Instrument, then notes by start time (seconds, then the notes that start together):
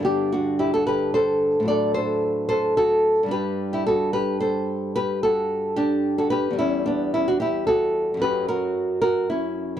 nylon-string guitar
Already playing: G2
0.00 D3 B3
0.05 D4 G4
0.32 D4 F#4
0.59 E4 G4
0.74 F#4 A4
0.87 G4 B4
1.14 A4 C5
1.60 A2 F#3
1.65 D4 A4 D5
1.94 A4 C5
2.49 A4 C5
2.77 F#4 A4
3.23 G2 G3
3.28 D4 B4
3.32 G4
3.73 E4 G4
3.87 F#4 A4
4.13 G4 B4
4.40 A4 C5
4.96 G4 B4
5.23 F#4 A4
5.76 D4 G4
6.18 F#4 A4
6.30 G4 B4
6.51 E2 G3
6.59 C#4 E4
6.86 B3 D4
7.14 C#4 E4
7.28 D4 F#4
7.40 E4 G4
7.67 F#4 A4
8.14 F#2 F#3
8.20 C#4 G4 B4
8.48 F#4 A#4
9.02 F#4 A#4
9.30 C#4 E4
9.77 E3